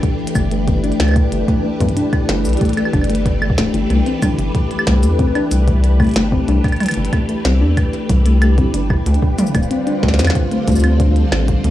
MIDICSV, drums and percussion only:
0, 0, Header, 1, 2, 480
1, 0, Start_track
1, 0, Tempo, 645161
1, 983, Time_signature, 4, 2, 24, 8
1, 8708, End_track
2, 0, Start_track
2, 0, Title_t, "Drums"
2, 23, Note_on_c, 9, 36, 123
2, 23, Note_on_c, 9, 42, 52
2, 97, Note_off_c, 9, 36, 0
2, 97, Note_off_c, 9, 42, 0
2, 203, Note_on_c, 9, 42, 94
2, 263, Note_on_c, 9, 36, 111
2, 263, Note_on_c, 9, 69, 76
2, 263, Note_on_c, 9, 75, 53
2, 277, Note_off_c, 9, 42, 0
2, 337, Note_off_c, 9, 36, 0
2, 337, Note_off_c, 9, 69, 0
2, 337, Note_off_c, 9, 75, 0
2, 383, Note_on_c, 9, 42, 54
2, 457, Note_off_c, 9, 42, 0
2, 503, Note_on_c, 9, 36, 127
2, 503, Note_on_c, 9, 42, 53
2, 577, Note_off_c, 9, 36, 0
2, 577, Note_off_c, 9, 42, 0
2, 623, Note_on_c, 9, 42, 28
2, 683, Note_off_c, 9, 42, 0
2, 683, Note_on_c, 9, 42, 22
2, 743, Note_off_c, 9, 42, 0
2, 743, Note_on_c, 9, 38, 127
2, 743, Note_on_c, 9, 42, 101
2, 743, Note_on_c, 9, 75, 24
2, 760, Note_off_c, 9, 75, 0
2, 760, Note_on_c, 9, 75, 28
2, 777, Note_off_c, 9, 75, 0
2, 777, Note_on_c, 9, 75, 31
2, 794, Note_off_c, 9, 75, 0
2, 794, Note_on_c, 9, 75, 34
2, 803, Note_off_c, 9, 42, 0
2, 803, Note_on_c, 9, 42, 15
2, 811, Note_off_c, 9, 75, 0
2, 811, Note_on_c, 9, 75, 40
2, 817, Note_off_c, 9, 38, 0
2, 829, Note_off_c, 9, 75, 0
2, 829, Note_on_c, 9, 75, 42
2, 846, Note_off_c, 9, 75, 0
2, 846, Note_on_c, 9, 75, 45
2, 863, Note_off_c, 9, 42, 0
2, 863, Note_on_c, 9, 36, 118
2, 863, Note_on_c, 9, 42, 52
2, 920, Note_off_c, 9, 75, 0
2, 937, Note_off_c, 9, 36, 0
2, 937, Note_off_c, 9, 42, 0
2, 983, Note_on_c, 9, 42, 56
2, 1058, Note_off_c, 9, 42, 0
2, 1103, Note_on_c, 9, 36, 123
2, 1103, Note_on_c, 9, 42, 28
2, 1177, Note_off_c, 9, 36, 0
2, 1178, Note_off_c, 9, 42, 0
2, 1343, Note_on_c, 9, 36, 111
2, 1343, Note_on_c, 9, 42, 92
2, 1343, Note_on_c, 9, 45, 93
2, 1403, Note_off_c, 9, 42, 0
2, 1403, Note_on_c, 9, 42, 56
2, 1417, Note_off_c, 9, 36, 0
2, 1418, Note_off_c, 9, 45, 0
2, 1463, Note_off_c, 9, 42, 0
2, 1463, Note_on_c, 9, 42, 53
2, 1538, Note_off_c, 9, 42, 0
2, 1583, Note_on_c, 9, 36, 118
2, 1583, Note_on_c, 9, 42, 26
2, 1583, Note_on_c, 9, 75, 50
2, 1657, Note_off_c, 9, 36, 0
2, 1657, Note_off_c, 9, 42, 0
2, 1657, Note_off_c, 9, 75, 0
2, 1703, Note_on_c, 9, 38, 118
2, 1703, Note_on_c, 9, 42, 91
2, 1777, Note_off_c, 9, 38, 0
2, 1777, Note_off_c, 9, 42, 0
2, 1823, Note_on_c, 9, 42, 24
2, 1823, Note_on_c, 9, 69, 82
2, 1853, Note_off_c, 9, 42, 0
2, 1853, Note_on_c, 9, 42, 27
2, 1883, Note_off_c, 9, 42, 0
2, 1883, Note_on_c, 9, 42, 31
2, 1897, Note_off_c, 9, 69, 0
2, 1913, Note_off_c, 9, 42, 0
2, 1913, Note_on_c, 9, 42, 36
2, 1943, Note_off_c, 9, 42, 0
2, 1943, Note_on_c, 9, 36, 115
2, 1943, Note_on_c, 9, 42, 52
2, 1973, Note_off_c, 9, 42, 0
2, 1973, Note_on_c, 9, 42, 39
2, 2003, Note_off_c, 9, 42, 0
2, 2003, Note_on_c, 9, 42, 44
2, 2017, Note_off_c, 9, 36, 0
2, 2033, Note_off_c, 9, 42, 0
2, 2033, Note_on_c, 9, 42, 44
2, 2063, Note_off_c, 9, 42, 0
2, 2063, Note_on_c, 9, 42, 25
2, 2063, Note_on_c, 9, 75, 48
2, 2123, Note_off_c, 9, 75, 0
2, 2123, Note_on_c, 9, 75, 39
2, 2138, Note_off_c, 9, 42, 0
2, 2183, Note_off_c, 9, 75, 0
2, 2183, Note_on_c, 9, 36, 122
2, 2183, Note_on_c, 9, 42, 41
2, 2183, Note_on_c, 9, 75, 33
2, 2243, Note_off_c, 9, 75, 0
2, 2243, Note_on_c, 9, 75, 26
2, 2257, Note_off_c, 9, 36, 0
2, 2258, Note_off_c, 9, 42, 0
2, 2263, Note_on_c, 9, 42, 56
2, 2303, Note_off_c, 9, 42, 0
2, 2303, Note_on_c, 9, 42, 51
2, 2318, Note_off_c, 9, 75, 0
2, 2343, Note_off_c, 9, 42, 0
2, 2343, Note_on_c, 9, 42, 69
2, 2418, Note_off_c, 9, 42, 0
2, 2423, Note_on_c, 9, 36, 108
2, 2423, Note_on_c, 9, 42, 53
2, 2497, Note_off_c, 9, 36, 0
2, 2498, Note_off_c, 9, 42, 0
2, 2543, Note_on_c, 9, 75, 82
2, 2603, Note_on_c, 9, 36, 127
2, 2618, Note_off_c, 9, 75, 0
2, 2663, Note_on_c, 9, 38, 120
2, 2663, Note_on_c, 9, 42, 90
2, 2677, Note_off_c, 9, 36, 0
2, 2738, Note_off_c, 9, 38, 0
2, 2738, Note_off_c, 9, 42, 0
2, 2783, Note_on_c, 9, 42, 53
2, 2858, Note_off_c, 9, 42, 0
2, 2903, Note_on_c, 9, 42, 50
2, 2978, Note_off_c, 9, 42, 0
2, 3023, Note_on_c, 9, 42, 28
2, 3098, Note_off_c, 9, 42, 0
2, 3143, Note_on_c, 9, 36, 103
2, 3143, Note_on_c, 9, 42, 90
2, 3143, Note_on_c, 9, 45, 93
2, 3143, Note_on_c, 9, 69, 65
2, 3143, Note_on_c, 9, 75, 50
2, 3217, Note_off_c, 9, 36, 0
2, 3217, Note_off_c, 9, 42, 0
2, 3217, Note_off_c, 9, 45, 0
2, 3217, Note_off_c, 9, 69, 0
2, 3217, Note_off_c, 9, 75, 0
2, 3263, Note_on_c, 9, 42, 53
2, 3338, Note_off_c, 9, 42, 0
2, 3383, Note_on_c, 9, 36, 113
2, 3383, Note_on_c, 9, 42, 49
2, 3457, Note_off_c, 9, 36, 0
2, 3457, Note_off_c, 9, 42, 0
2, 3503, Note_on_c, 9, 42, 26
2, 3563, Note_on_c, 9, 75, 81
2, 3577, Note_off_c, 9, 42, 0
2, 3623, Note_on_c, 9, 36, 106
2, 3623, Note_on_c, 9, 38, 118
2, 3623, Note_on_c, 9, 42, 86
2, 3637, Note_off_c, 9, 75, 0
2, 3697, Note_off_c, 9, 36, 0
2, 3697, Note_off_c, 9, 38, 0
2, 3697, Note_off_c, 9, 42, 0
2, 3743, Note_on_c, 9, 42, 52
2, 3743, Note_on_c, 9, 69, 82
2, 3817, Note_off_c, 9, 42, 0
2, 3817, Note_off_c, 9, 69, 0
2, 3863, Note_on_c, 9, 36, 127
2, 3863, Note_on_c, 9, 42, 50
2, 3937, Note_off_c, 9, 36, 0
2, 3937, Note_off_c, 9, 42, 0
2, 3983, Note_on_c, 9, 42, 26
2, 3983, Note_on_c, 9, 75, 48
2, 4057, Note_off_c, 9, 42, 0
2, 4057, Note_off_c, 9, 75, 0
2, 4103, Note_on_c, 9, 42, 93
2, 4103, Note_on_c, 9, 69, 85
2, 4177, Note_off_c, 9, 42, 0
2, 4177, Note_off_c, 9, 69, 0
2, 4223, Note_on_c, 9, 36, 107
2, 4223, Note_on_c, 9, 42, 50
2, 4297, Note_off_c, 9, 36, 0
2, 4297, Note_off_c, 9, 42, 0
2, 4343, Note_on_c, 9, 42, 51
2, 4417, Note_off_c, 9, 42, 0
2, 4463, Note_on_c, 9, 36, 117
2, 4463, Note_on_c, 9, 42, 12
2, 4463, Note_on_c, 9, 75, 52
2, 4480, Note_off_c, 9, 42, 0
2, 4480, Note_on_c, 9, 42, 14
2, 4497, Note_off_c, 9, 42, 0
2, 4497, Note_on_c, 9, 42, 15
2, 4514, Note_off_c, 9, 42, 0
2, 4514, Note_on_c, 9, 42, 18
2, 4531, Note_off_c, 9, 42, 0
2, 4531, Note_on_c, 9, 42, 20
2, 4537, Note_off_c, 9, 36, 0
2, 4537, Note_off_c, 9, 75, 0
2, 4549, Note_off_c, 9, 42, 0
2, 4549, Note_on_c, 9, 42, 22
2, 4566, Note_off_c, 9, 42, 0
2, 4566, Note_on_c, 9, 42, 24
2, 4583, Note_off_c, 9, 42, 0
2, 4583, Note_on_c, 9, 38, 123
2, 4583, Note_on_c, 9, 42, 91
2, 4657, Note_off_c, 9, 38, 0
2, 4657, Note_off_c, 9, 42, 0
2, 4703, Note_on_c, 9, 36, 113
2, 4777, Note_off_c, 9, 36, 0
2, 4823, Note_on_c, 9, 42, 55
2, 4897, Note_off_c, 9, 42, 0
2, 4943, Note_on_c, 9, 36, 121
2, 4943, Note_on_c, 9, 42, 26
2, 4943, Note_on_c, 9, 75, 38
2, 4972, Note_off_c, 9, 42, 0
2, 4972, Note_on_c, 9, 42, 21
2, 5003, Note_off_c, 9, 42, 0
2, 5003, Note_off_c, 9, 75, 0
2, 5003, Note_on_c, 9, 42, 18
2, 5003, Note_on_c, 9, 75, 48
2, 5017, Note_off_c, 9, 36, 0
2, 5032, Note_off_c, 9, 42, 0
2, 5032, Note_on_c, 9, 42, 14
2, 5062, Note_off_c, 9, 42, 0
2, 5062, Note_off_c, 9, 75, 0
2, 5062, Note_on_c, 9, 42, 41
2, 5062, Note_on_c, 9, 45, 95
2, 5062, Note_on_c, 9, 75, 54
2, 5082, Note_off_c, 9, 42, 0
2, 5082, Note_on_c, 9, 42, 45
2, 5103, Note_off_c, 9, 42, 0
2, 5103, Note_on_c, 9, 42, 56
2, 5123, Note_off_c, 9, 42, 0
2, 5123, Note_off_c, 9, 75, 0
2, 5123, Note_on_c, 9, 42, 64
2, 5123, Note_on_c, 9, 75, 67
2, 5137, Note_off_c, 9, 45, 0
2, 5143, Note_off_c, 9, 42, 0
2, 5143, Note_on_c, 9, 42, 75
2, 5163, Note_off_c, 9, 42, 0
2, 5163, Note_on_c, 9, 42, 81
2, 5197, Note_off_c, 9, 75, 0
2, 5237, Note_off_c, 9, 42, 0
2, 5243, Note_on_c, 9, 42, 51
2, 5303, Note_off_c, 9, 42, 0
2, 5303, Note_on_c, 9, 36, 106
2, 5303, Note_on_c, 9, 42, 47
2, 5303, Note_on_c, 9, 75, 50
2, 5377, Note_off_c, 9, 36, 0
2, 5377, Note_off_c, 9, 42, 0
2, 5377, Note_off_c, 9, 75, 0
2, 5423, Note_on_c, 9, 42, 27
2, 5497, Note_off_c, 9, 42, 0
2, 5543, Note_on_c, 9, 38, 116
2, 5543, Note_on_c, 9, 42, 95
2, 5617, Note_off_c, 9, 38, 0
2, 5617, Note_off_c, 9, 42, 0
2, 5783, Note_on_c, 9, 36, 105
2, 5783, Note_on_c, 9, 42, 51
2, 5783, Note_on_c, 9, 75, 54
2, 5857, Note_off_c, 9, 36, 0
2, 5857, Note_off_c, 9, 42, 0
2, 5857, Note_off_c, 9, 75, 0
2, 5903, Note_on_c, 9, 42, 25
2, 5977, Note_off_c, 9, 42, 0
2, 6023, Note_on_c, 9, 36, 116
2, 6023, Note_on_c, 9, 42, 94
2, 6097, Note_off_c, 9, 36, 0
2, 6097, Note_off_c, 9, 42, 0
2, 6143, Note_on_c, 9, 42, 51
2, 6217, Note_off_c, 9, 42, 0
2, 6263, Note_on_c, 9, 42, 53
2, 6263, Note_on_c, 9, 75, 81
2, 6337, Note_off_c, 9, 42, 0
2, 6337, Note_off_c, 9, 75, 0
2, 6383, Note_on_c, 9, 36, 108
2, 6383, Note_on_c, 9, 42, 28
2, 6457, Note_off_c, 9, 36, 0
2, 6457, Note_off_c, 9, 42, 0
2, 6503, Note_on_c, 9, 42, 95
2, 6577, Note_off_c, 9, 42, 0
2, 6623, Note_on_c, 9, 36, 124
2, 6623, Note_on_c, 9, 75, 52
2, 6697, Note_off_c, 9, 36, 0
2, 6697, Note_off_c, 9, 75, 0
2, 6743, Note_on_c, 9, 42, 55
2, 6803, Note_off_c, 9, 42, 0
2, 6803, Note_on_c, 9, 42, 27
2, 6863, Note_on_c, 9, 36, 103
2, 6877, Note_off_c, 9, 42, 0
2, 6937, Note_off_c, 9, 36, 0
2, 6983, Note_on_c, 9, 42, 91
2, 6983, Note_on_c, 9, 45, 104
2, 6983, Note_on_c, 9, 69, 60
2, 7043, Note_off_c, 9, 69, 0
2, 7043, Note_on_c, 9, 69, 49
2, 7057, Note_off_c, 9, 42, 0
2, 7057, Note_off_c, 9, 45, 0
2, 7103, Note_off_c, 9, 69, 0
2, 7103, Note_on_c, 9, 36, 118
2, 7103, Note_on_c, 9, 42, 55
2, 7103, Note_on_c, 9, 69, 41
2, 7103, Note_on_c, 9, 75, 55
2, 7163, Note_off_c, 9, 69, 0
2, 7163, Note_on_c, 9, 69, 34
2, 7177, Note_off_c, 9, 36, 0
2, 7177, Note_off_c, 9, 42, 0
2, 7177, Note_off_c, 9, 75, 0
2, 7223, Note_on_c, 9, 42, 51
2, 7237, Note_off_c, 9, 69, 0
2, 7297, Note_off_c, 9, 42, 0
2, 7343, Note_on_c, 9, 42, 27
2, 7417, Note_off_c, 9, 42, 0
2, 7463, Note_on_c, 9, 36, 104
2, 7463, Note_on_c, 9, 38, 55
2, 7503, Note_off_c, 9, 38, 0
2, 7503, Note_on_c, 9, 38, 64
2, 7537, Note_off_c, 9, 36, 0
2, 7543, Note_off_c, 9, 38, 0
2, 7543, Note_on_c, 9, 38, 73
2, 7583, Note_off_c, 9, 38, 0
2, 7583, Note_on_c, 9, 38, 81
2, 7583, Note_on_c, 9, 69, 83
2, 7623, Note_off_c, 9, 38, 0
2, 7623, Note_on_c, 9, 38, 90
2, 7643, Note_on_c, 9, 42, 52
2, 7643, Note_on_c, 9, 75, 82
2, 7657, Note_off_c, 9, 69, 0
2, 7663, Note_off_c, 9, 38, 0
2, 7663, Note_on_c, 9, 38, 101
2, 7703, Note_off_c, 9, 42, 0
2, 7703, Note_on_c, 9, 36, 116
2, 7703, Note_on_c, 9, 42, 53
2, 7717, Note_off_c, 9, 75, 0
2, 7737, Note_off_c, 9, 38, 0
2, 7777, Note_off_c, 9, 36, 0
2, 7777, Note_off_c, 9, 42, 0
2, 7823, Note_on_c, 9, 42, 25
2, 7897, Note_off_c, 9, 42, 0
2, 7943, Note_on_c, 9, 36, 101
2, 7943, Note_on_c, 9, 42, 91
2, 7943, Note_on_c, 9, 69, 38
2, 7973, Note_off_c, 9, 69, 0
2, 7973, Note_on_c, 9, 69, 49
2, 8003, Note_off_c, 9, 69, 0
2, 8003, Note_on_c, 9, 69, 59
2, 8017, Note_off_c, 9, 36, 0
2, 8017, Note_off_c, 9, 42, 0
2, 8033, Note_off_c, 9, 69, 0
2, 8033, Note_on_c, 9, 69, 66
2, 8063, Note_on_c, 9, 42, 52
2, 8063, Note_on_c, 9, 75, 54
2, 8107, Note_off_c, 9, 69, 0
2, 8137, Note_off_c, 9, 42, 0
2, 8137, Note_off_c, 9, 75, 0
2, 8183, Note_on_c, 9, 36, 110
2, 8183, Note_on_c, 9, 42, 52
2, 8257, Note_off_c, 9, 36, 0
2, 8257, Note_off_c, 9, 42, 0
2, 8303, Note_on_c, 9, 42, 28
2, 8377, Note_off_c, 9, 42, 0
2, 8423, Note_on_c, 9, 38, 118
2, 8423, Note_on_c, 9, 75, 59
2, 8497, Note_off_c, 9, 38, 0
2, 8497, Note_off_c, 9, 75, 0
2, 8543, Note_on_c, 9, 36, 106
2, 8543, Note_on_c, 9, 42, 53
2, 8617, Note_off_c, 9, 36, 0
2, 8617, Note_off_c, 9, 42, 0
2, 8663, Note_on_c, 9, 42, 59
2, 8708, Note_off_c, 9, 42, 0
2, 8708, End_track
0, 0, End_of_file